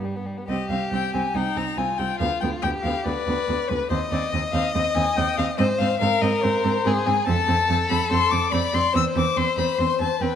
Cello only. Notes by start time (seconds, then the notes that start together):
Already playing: G2
0.49 C2
0.70 C2
0.92 C2
1.14 C2
1.35 C2
1.56 C2
1.78 C2
2.00 C2
2.21 D2
2.43 D2
2.63 D2
2.85 D2
3.06 D2
3.27 D2
3.48 D2
3.70 D2
3.91 D#2
4.12 D#2
4.33 D#2
4.54 D#2
4.75 D#2
4.96 D#2
5.18 D#2
5.38 D#2
5.59 G#2
5.80 G#2
6.01 G#2
6.22 G#2
6.44 G#2
6.64 G#2
6.86 G#2
7.07 G#2
7.28 F2
7.48 F2
7.70 F2
7.91 F2
8.11 F2
8.32 F2
8.52 F2
8.73 F2
8.95 E2
9.16 E2
9.37 E2
9.57 E2
9.79 E2
10.00 E2
10.21 E2